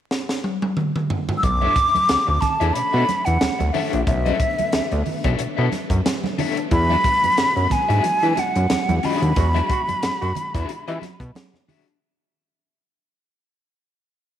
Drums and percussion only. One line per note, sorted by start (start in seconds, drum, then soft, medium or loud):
0.11 snare medium
0.29 snare medium
0.44 high tom medium
0.62 high tom medium
0.77 mid tom loud
0.96 mid tom loud
1.10 floor tom loud
1.29 floor tom loud
1.43 kick loud
1.43 closed hi-hat medium
1.62 muted conga soft
1.62 high conga medium
1.76 kick loud
1.76 closed hi-hat medium
1.95 closed hi-hat medium
1.95 high conga medium
2.09 snare loud
2.09 closed hi-hat medium
2.09 muted conga soft
2.42 kick medium
2.42 snare soft
2.42 closed hi-hat medium
2.42 low conga medium
2.61 closed hi-hat medium
2.75 closed hi-hat medium
2.94 muted conga soft
3.09 snare soft
3.09 closed hi-hat medium
3.09 high conga medium
3.26 closed hi-hat medium
3.41 snare loud
3.41 closed hi-hat medium
3.41 muted conga soft
3.41 high conga medium
3.60 closed hi-hat soft
3.60 high conga medium
3.74 open hi-hat medium
3.74 low conga medium
3.93 closed hi-hat medium
4.07 kick loud
4.07 closed hi-hat medium
4.07 muted conga soft
4.26 closed hi-hat soft
4.26 muted conga soft
4.26 high conga soft
4.40 kick loud
4.40 closed hi-hat medium
4.58 closed hi-hat soft
4.58 high conga medium
4.72 snare loud
4.72 closed hi-hat medium
4.72 muted conga soft
4.92 closed hi-hat soft
4.92 muted conga soft
5.06 open hi-hat soft
5.06 low conga medium
5.24 kick medium
5.24 closed hi-hat medium
5.39 closed hi-hat medium
5.39 muted conga soft
5.58 muted conga soft
5.72 snare soft
5.72 closed hi-hat medium
5.72 high conga medium
5.90 kick medium
5.90 closed hi-hat medium
6.06 snare loud
6.06 closed hi-hat loud
6.06 muted conga soft
6.06 high conga medium
6.24 snare soft
6.24 muted conga soft
6.24 high conga medium
6.38 open hi-hat medium
6.38 low conga medium
6.57 closed hi-hat medium
6.71 kick loud
6.71 closed hi-hat medium
6.71 muted conga soft
6.89 high conga medium
7.04 kick medium
7.04 closed hi-hat medium
7.24 closed hi-hat soft
7.24 high conga medium
7.38 snare loud
7.38 closed hi-hat medium
7.56 closed hi-hat soft
7.56 muted conga soft
7.70 kick medium
7.70 snare soft
7.70 closed hi-hat medium
7.70 low conga medium
7.90 closed hi-hat medium
8.04 closed hi-hat medium
8.04 muted conga soft
8.23 closed hi-hat soft
8.37 snare soft
8.37 closed hi-hat medium
8.37 high conga medium
8.56 closed hi-hat medium
8.70 snare loud
8.70 closed hi-hat medium
8.70 muted conga soft
8.70 high conga medium
8.89 closed hi-hat soft
8.89 muted conga soft
8.89 high conga medium
9.03 open hi-hat medium
9.03 low conga medium
9.23 closed hi-hat medium
9.36 kick loud
9.36 closed hi-hat medium
9.36 muted conga soft
9.55 closed hi-hat soft
9.55 muted conga soft
9.55 high conga medium
9.70 kick loud
9.70 closed hi-hat medium
9.89 closed hi-hat soft
9.89 high conga medium
10.03 snare loud
10.03 closed hi-hat loud
10.03 muted conga soft
10.22 closed hi-hat soft
10.35 closed hi-hat medium
10.35 low conga medium
10.55 kick medium
10.55 closed hi-hat medium
10.69 closed hi-hat medium
10.69 muted conga soft
10.88 closed hi-hat soft
10.88 muted conga soft
11.02 snare soft
11.02 closed hi-hat medium
11.02 high conga medium
11.20 kick medium
11.20 closed hi-hat medium
11.35 snare loud
11.35 closed hi-hat loud
11.35 muted conga soft
11.35 high conga medium
11.54 snare soft
11.54 high conga medium
11.68 open hi-hat medium
11.68 low conga medium